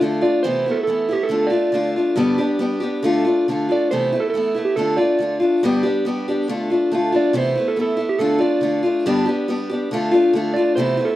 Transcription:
0.01 steel-string acoustic guitar D3 A3 D4 F4
0.21 steel-string acoustic guitar D4 F4, electric slide guitar D5
0.25 steel-string acoustic guitar A3
0.43 steel-string acoustic guitar C3 E3 A3 B3 E4, electric slide guitar C5
0.66 steel-string acoustic guitar A3 B3 E4
0.71 electric slide guitar A4
0.83 steel-string acoustic guitar E3, electric slide guitar A4
0.88 steel-string acoustic guitar A3 B3 E4
1.09 steel-string acoustic guitar A3 B3 E4, electric slide guitar G4
1.23 electric slide guitar A4
1.29 steel-string acoustic guitar D3 A3 D4 F4
1.47 steel-string acoustic guitar F4, electric slide guitar D5
1.52 steel-string acoustic guitar A3 D4
1.72 steel-string acoustic guitar D3 A3 D4 F4
1.96 steel-string acoustic guitar A3 D4 F4
2.16 steel-string acoustic guitar G2 D3 G3 B3 D4 G4
2.38 steel-string acoustic guitar G3 B3 D4 G4
2.59 steel-string acoustic guitar G3 B3 D4 G4
2.80 steel-string acoustic guitar G3 B3 D4 G4
3.03 steel-string acoustic guitar D3 A3 D4 F4
3.25 steel-string acoustic guitar A3 D4 F4
3.48 steel-string acoustic guitar D3 A3 D4 F4
3.69 steel-string acoustic guitar A3 D4 F4, electric slide guitar D5
3.91 steel-string acoustic guitar C3 E3 A3 B3 E4, electric slide guitar C5
4.12 steel-string acoustic guitar A3 B3 E4
4.20 electric slide guitar A4
4.30 electric slide guitar A4
4.34 steel-string acoustic guitar E3 A3 B3 E4
4.55 steel-string acoustic guitar A3 B3 E4
4.65 electric slide guitar G4
4.76 steel-string acoustic guitar D3 A3 D4 F4, electric slide guitar A4
4.97 steel-string acoustic guitar D4 F4, electric slide guitar D5
5.01 steel-string acoustic guitar A3
5.19 steel-string acoustic guitar D3 A3 D4 F4
5.40 steel-string acoustic guitar A3 D4 F4
5.63 steel-string acoustic guitar G2 D3 G3 B3 D4 G4
5.83 steel-string acoustic guitar G3 B3 D4 G4
6.05 steel-string acoustic guitar G3 B3 D4 G4
6.28 steel-string acoustic guitar G3 B3 D4 G4
6.48 steel-string acoustic guitar D3 A3 D4 F4
6.70 steel-string acoustic guitar A3 D4 F4
6.91 steel-string acoustic guitar D3 A3 D4 F4
7.12 steel-string acoustic guitar A3 D4 F4, electric slide guitar D5
7.33 steel-string acoustic guitar C3 E3 A3 B3 E4
7.37 electric slide guitar C5
7.55 steel-string acoustic guitar A3 B3 E4
7.68 electric slide guitar A4
7.76 steel-string acoustic guitar E3 A3 B3 E4
7.81 electric slide guitar A4
7.97 steel-string acoustic guitar A3 B3 E4
8.09 electric slide guitar G4
8.19 steel-string acoustic guitar D3 A3 D4 F4, electric slide guitar A4
8.39 steel-string acoustic guitar A3 D4 F4, electric slide guitar D5
8.61 steel-string acoustic guitar D3 A3 D4 F4
8.83 steel-string acoustic guitar A3 D4 F4
9.06 steel-string acoustic guitar G2 D3 G3 B3 D4 G4
9.26 steel-string acoustic guitar G3 B3 D4 G4
9.48 steel-string acoustic guitar G3 B3 D4 G4
9.70 steel-string acoustic guitar B3 D4 G4
9.74 steel-string acoustic guitar G3
9.91 steel-string acoustic guitar D3 A3 D4 F4
10.11 steel-string acoustic guitar A3 D4 F4
10.33 steel-string acoustic guitar D3 A3 D4 F4
10.54 steel-string acoustic guitar F4, electric slide guitar D5
10.58 steel-string acoustic guitar A3 D4
10.76 steel-string acoustic guitar C3 E3 A3 B3 E4, electric slide guitar C5
10.97 steel-string acoustic guitar A3 B3 E4
11.05 electric slide guitar A4

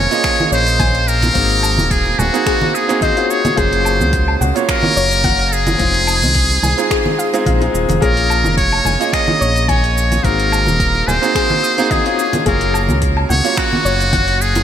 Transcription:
Already playing: grand piano A#3 C#4 F4 G#4 C5, muted trumpet C#5, synth pluck G#5
0.10 grand piano A#3 C#4 F4 G#4 D#5, open hi-hat, shaker
0.24 finger snap, kick, open hi-hat, shaker
0.40 high conga
0.52 analog synth bass A#1, muted trumpet C5, synth pluck C#5, shaker
0.67 open hi-hat, shaker
0.79 synth pluck G#5, kick, open hi-hat, high conga, shaker
0.95 open hi-hat
1.08 muted trumpet A#4, shaker
1.22 open hi-hat, muted conga, high conga, shaker
1.33 analog synth bass G#1, grand piano A#3 C4 D#4 F#4 G#4, kick, open hi-hat, shaker
1.50 open hi-hat
1.63 low woodblock, shaker
1.78 analog synth bass D#1, high conga, shaker
1.91 muted trumpet G#4, kick, open hi-hat, shaker
2.06 muted conga
2.19 analog synth bass D#1, muted trumpet F#4, synth pluck G#5, low conga, shaker
2.33 grand piano A#3 C4 D#4 F#4 G#4, open hi-hat, shaker
2.46 synth pluck G#4, finger snap, kick, open hi-hat, shaker
2.61 high conga
2.74 muted trumpet G#4, synth pluck D#6, shaker
2.88 grand piano A#3 C4 D#4 F#4 G#4, open hi-hat, shaker
3.01 muted trumpet C5, synth pluck D#5, kick, open hi-hat, high conga, shaker
3.16 grand piano A#3 C#4 F4 F#4 G#4, open hi-hat
3.31 muted trumpet C#5, shaker
3.45 open hi-hat, muted conga, high conga, shaker
3.55 analog synth bass F#1, grand piano A#3 C#4 F4 F#4 G#4, synth pluck G#4, muted trumpet C5, kick, open hi-hat, shaker
3.73 open hi-hat
3.85 low woodblock, shaker
4.00 analog synth bass C#2, high conga, shaker
4.13 kick, open hi-hat, shaker
4.28 low woodblock
4.41 analog synth bass C#2, synth pluck F#5, low conga, shaker
4.55 grand piano A#3 C#4 F4 F#4 C#5, open hi-hat, shaker
4.69 muted trumpet A#4, finger snap, kick, open hi-hat, shaker
4.83 high conga
4.96 analog synth bass F#1, synth pluck C#5, shaker
5.11 open hi-hat, shaker
5.24 synth pluck F#5, kick, open hi-hat, high conga, shaker
5.39 open hi-hat
5.53 muted trumpet G#4, shaker
5.67 open hi-hat, muted conga, high conga, shaker
5.78 analog synth bass F1, grand piano G#3 C4 D#4 F4 G#4, kick, open hi-hat, shaker
5.94 open hi-hat
6.07 low woodblock, shaker
6.22 analog synth bass C2, open hi-hat, high conga, shaker
6.35 kick, open hi-hat, shaker
6.50 muted conga
6.63 analog synth bass C2, synth pluck G#5, high conga, low conga, shaker
6.77 grand piano G#3 C4 D#4 F4 G#4, open hi-hat, shaker
6.91 synth pluck G#4, finger snap, kick, open hi-hat, shaker
7.06 high conga
7.18 synth pluck F5, shaker
7.33 grand piano G#3 C4 D#4 F4 G#4, open hi-hat, shaker
7.46 analog synth bass A#1, synth pluck F5, kick, open hi-hat, high conga, shaker
7.61 grand piano G#3 C4 D#4 F4 G#4, open hi-hat, muted conga
7.74 analog synth bass D#1, shaker
7.89 analog synth bass F1, open hi-hat, muted conga, high conga, shaker
8.00 analog synth bass A#1, grand piano A#3 C#4 F4 G#4 C#5, synth pluck G#4, muted trumpet A#4, kick, open hi-hat, shaker
8.17 open hi-hat
8.30 low woodblock, shaker
8.44 analog synth bass F1, high conga, shaker
8.57 muted trumpet C#5, kick, open hi-hat, shaker
8.72 low woodblock
8.85 analog synth bass F1, synth pluck G#5, high conga, low conga, shaker
8.99 grand piano A#3 C#4 F4 G#4 D#5, open hi-hat, shaker
9.13 muted trumpet D#5, finger snap, kick, open hi-hat, shaker
9.28 high conga
9.41 analog synth bass A#1, synth pluck C#5, shaker
9.56 open hi-hat, shaker
9.68 muted trumpet C#5, synth pluck G#5, kick, open hi-hat, high conga, shaker
9.84 open hi-hat
9.98 shaker
10.12 open hi-hat, muted conga, high conga, shaker
10.23 analog synth bass G#1, grand piano A#3 C4 D#4 F#4 G#4, muted trumpet A#4, kick, open hi-hat, shaker
10.40 open hi-hat
10.52 low woodblock, shaker
10.67 analog synth bass D#1, high conga, shaker
10.80 kick, open hi-hat, shaker
10.95 muted conga
11.07 analog synth bass D#1, muted trumpet C5, synth pluck G#5, low conga, shaker
11.22 grand piano A#3 C4 D#4 F#4 G#4, open hi-hat, shaker
11.35 synth pluck G#4, finger snap, kick, open hi-hat, shaker
11.50 high conga
11.63 synth pluck D#6, shaker
11.78 grand piano A#3 C4 D#4 F#4 G#4, open hi-hat, shaker
11.91 muted trumpet G#4, synth pluck D#5, kick, open hi-hat, high conga, shaker
12.05 grand piano A#3 C#4 F4 F#4 G#4, open hi-hat
12.19 shaker
12.33 open hi-hat, muted conga, high conga, shaker
12.45 analog synth bass F#1, grand piano A#3 C#4 F4 F#4 G#4, synth pluck G#4, muted trumpet A#4, kick, open hi-hat, shaker
12.61 open hi-hat
12.74 low woodblock, shaker
12.89 analog synth bass C#2, high conga, shaker
13.02 kick, open hi-hat, shaker
13.17 low woodblock
13.30 analog synth bass C#2, muted trumpet C#5, synth pluck F#5, high conga, low conga, shaker
13.44 grand piano A#3 C#4 F4 F#4 C#5, open hi-hat, shaker
13.57 muted trumpet F#4, finger snap, kick, open hi-hat, shaker
13.73 high conga
13.85 analog synth bass F#1, synth pluck C#5, shaker
14.00 open hi-hat, shaker
14.13 synth pluck F#5, kick, open hi-hat, high conga, shaker
14.28 open hi-hat
14.41 muted trumpet G#4, shaker
14.55 open hi-hat, muted conga, high conga, shaker

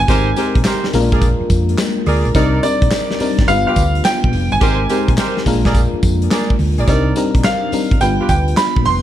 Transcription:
Already playing: fm electric piano G3 B3
0.00 grand piano G#5
0.08 fingered electric bass G#1, fm electric piano G#3 C4 D#4 G4 A#4, horn section G4 A#4 C5, kick, closed hi-hat, tambourine
0.36 fm electric piano G#3 C4 D#4 G4 A#4, horn section G4 A#4 C5, closed hi-hat, tambourine
0.55 fingered electric bass A#1, kick, closed hi-hat
0.65 horn section G4 A#4 C5, snare, clap, closed hi-hat, tambourine
0.84 snare
0.93 fingered electric bass A#1, fm electric piano G#3 A#3 C#4 F4 A#4, open hi-hat, tambourine
1.01 fm electric piano D4
1.12 horn section G#4 A#4 D5, kick, closed hi-hat
1.22 kick, closed hi-hat, tambourine
1.41 muted fingered electric bass stroke
1.50 fingered electric bass F2, kick, closed hi-hat, tambourine
1.69 closed hi-hat
1.78 snare, clap, closed hi-hat, tambourine
2.06 fingered electric bass D2, horn section G#4 A#4 D5, open hi-hat
2.25 fingered electric bass A#1, closed hi-hat
2.35 fingered electric bass C2, fm electric piano G3 C4 D4 D#4 A#4, horn section D#4 A#4 D5, kick, closed hi-hat, tambourine
2.63 fm electric piano G3 C4 D4 D#4 A#4, grand piano D5, closed hi-hat, tambourine
2.82 fingered electric bass A#1, kick, closed hi-hat
2.91 snare, clap, closed hi-hat, tambourine
3.11 snare
3.19 fm electric piano G3 C4 D4 D#4 A#4, muted fingered electric bass stroke, open hi-hat, tambourine
3.39 fingered electric bass G1, kick, snare, closed hi-hat
3.48 fingered electric bass G1, fm electric piano G3 B3 D4 F4 B4, grand piano F5, closed hi-hat, tambourine
3.67 horn section F4 G4 B4, grand piano F5, muted fingered electric bass stroke
3.76 fingered electric bass D2, kick, closed hi-hat, tambourine
3.95 closed hi-hat
4.05 grand piano G5, snare, clap, closed hi-hat, tambourine
4.24 fingered electric bass A#1, kick
4.33 fingered electric bass F1, open hi-hat
4.52 fingered electric bass G1, grand piano G#5, closed hi-hat
4.61 fingered electric bass G#1, fm electric piano G#3 C4 D#4 G4 A#4, horn section G4 A#4 C5, kick, closed hi-hat, tambourine
4.89 fm electric piano G#3 C4 D#4 G4 A#4, horn section G4 A#4 C5, closed hi-hat, tambourine
5.08 fingered electric bass A#1, kick, closed hi-hat
5.17 horn section G4 A#4 C5, snare, clap, closed hi-hat, tambourine
5.37 snare
5.46 fingered electric bass A#1, fm electric piano G#3 A#3 D4 F4 A#4, kick, open hi-hat, tambourine
5.65 horn section G#4 A#4 D5, kick, snare, closed hi-hat
5.75 kick, closed hi-hat, tambourine
5.93 muted fingered electric bass stroke
6.03 fingered electric bass F2, kick, closed hi-hat, tambourine
6.22 closed hi-hat
6.31 horn section G#4 A#4 D5, snare, clap, closed hi-hat, tambourine
6.50 kick
6.59 fingered electric bass D2, open hi-hat
6.78 fingered electric bass A#1, horn section G#4 A#4 D5, closed hi-hat
6.87 fingered electric bass C2, fm electric piano G3 C4 D4 D#4 A#4, horn section D#4 A#4 D5, kick, closed hi-hat, tambourine
7.16 fm electric piano G3 C4 D4 D#4 A#4, closed hi-hat, tambourine
7.35 fingered electric bass A#1, kick, closed hi-hat
7.44 grand piano F5, snare, clap, closed hi-hat, tambourine
7.72 fm electric piano G3 C4 D4 D#4 A#4, muted fingered electric bass stroke, open hi-hat, tambourine
7.91 fingered electric bass G1, kick, closed hi-hat
8.01 fingered electric bass G1, fm electric piano G3 B3 D4 F4 B4, grand piano G5, closed hi-hat, tambourine
8.19 horn section F4 G4 B4, muted fingered electric bass stroke
8.29 fingered electric bass D2, grand piano G5, kick, closed hi-hat, tambourine
8.48 closed hi-hat
8.57 grand piano B5, snare, clap, closed hi-hat, tambourine
8.76 fingered electric bass A#1, kick
8.85 fingered electric bass F1, grand piano C6, open hi-hat

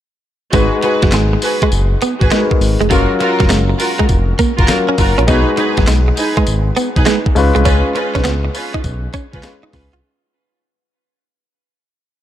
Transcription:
0.53 analog synth bass G#1, grand piano G#3 D#4 F#4 B4, clean electric guitar G#3, string section F#4 G#4 B4, kick, closed hi-hat, tambourine
0.83 string section F#4 G#4 B4, muted clean electric guitar stroke, closed hi-hat
1.02 analog synth bass F#1, clean electric guitar F#3, kick, snare, closed hi-hat
1.12 analog synth bass G#1, clean electric guitar G#3, snare, clap, closed hi-hat, tambourine
1.33 muted clean electric guitar stroke
1.42 string section F#4 G#4 B4, open hi-hat, tambourine
1.62 clean electric guitar G#3, kick, closed hi-hat
1.72 analog synth bass F#1, closed hi-hat, tambourine
2.02 clean electric guitar B3, closed hi-hat, tambourine
2.21 analog synth bass G#1, string section F#4 G#4 B4, kick, closed hi-hat
2.31 clean electric guitar G#3, grand piano G#3 D#4 F#4 A#4, snare, clap, closed hi-hat, tambourine
2.40 grand piano B4
2.51 muted clean electric guitar stroke, kick
2.60 analog synth bass G#1, open hi-hat, tambourine
2.81 analog synth bass F1, clean electric guitar G#3, closed hi-hat
2.90 analog synth bass F#1, grand piano F#3 C#4 F4 A#4, clean electric guitar F#3, string section F4 F#4 A#4, kick, closed hi-hat, tambourine
3.20 string section F4 F#4 A#4, muted clean electric guitar stroke, closed hi-hat
3.40 analog synth bass F1, clean electric guitar F#3, kick, snare, closed hi-hat
3.49 analog synth bass F#1, clean electric guitar G#3, snare, clap, closed hi-hat, tambourine
3.69 muted clean electric guitar stroke
3.79 string section F4 F#4 A#4, open hi-hat, tambourine
3.99 clean electric guitar G#3, kick, closed hi-hat
4.09 analog synth bass F1, kick, closed hi-hat, tambourine
4.39 clean electric guitar A#3, kick, closed hi-hat, tambourine
4.58 analog synth bass F#1, string section F4 F#4 A#4, kick, closed hi-hat
4.68 grand piano F#3 C#4 F4 A#4, snare, clap, closed hi-hat, tambourine
4.89 clean electric guitar C#4
4.98 analog synth bass F#1, string section F4 F#4 A#4, muted clean electric guitar stroke, kick, open hi-hat, tambourine
5.18 analog synth bass A#1, clean electric guitar C#4, closed hi-hat
5.27 analog synth bass B1, grand piano G#3 D#4 F#4 B4, clean electric guitar B3, string section D#4 G#4 B4, kick, closed hi-hat, tambourine
5.57 string section D#4 G#4 B4, muted clean electric guitar stroke, closed hi-hat
5.77 analog synth bass G#1, clean electric guitar F#3, kick, snare, closed hi-hat
5.87 analog synth bass B1, clean electric guitar G#3, snare, clap, closed hi-hat, tambourine
6.08 muted clean electric guitar stroke
6.17 string section D#4 G#4 B4, open hi-hat, tambourine
6.37 clean electric guitar G#3, kick, closed hi-hat
6.47 analog synth bass G#1, closed hi-hat, tambourine
6.76 clean electric guitar B3, closed hi-hat, tambourine
6.96 analog synth bass B1, string section D#4 G#4 B4, kick, closed hi-hat
7.06 clean electric guitar G#3, snare, clap, closed hi-hat, tambourine
7.26 muted clean electric guitar stroke, kick
7.35 analog synth bass C#2, grand piano G#3 C#4 F4 B4, open hi-hat, tambourine
7.55 analog synth bass C2, clean electric guitar G#3, closed hi-hat
7.65 analog synth bass C#2, string section C#4 F4 B4, clean electric guitar C#4, kick, closed hi-hat, tambourine
7.95 string section C#4 F4 B4, muted clean electric guitar stroke, closed hi-hat
8.15 analog synth bass B1, clean electric guitar C#4, kick, snare, closed hi-hat
8.24 analog synth bass C#2, clean electric guitar B3, snare, clap, closed hi-hat, tambourine
8.45 muted clean electric guitar stroke
8.54 string section C#4 F4 B4, open hi-hat, tambourine
8.74 clean electric guitar D#4, kick, closed hi-hat
8.84 analog synth bass B1, kick, closed hi-hat, tambourine
9.14 clean electric guitar C#4, kick, closed hi-hat, tambourine
9.33 analog synth bass C#2, string section C#4 F4 B4, kick, closed hi-hat
9.43 grand piano G#3 C#4 F4 B4, snare, clap, closed hi-hat, tambourine
9.63 clean electric guitar D#4
9.72 analog synth bass C#2, string section C#4 F4 B4, muted clean electric guitar stroke, kick, snare, open hi-hat, tambourine
9.93 analog synth bass C2, clean electric guitar F4, closed hi-hat

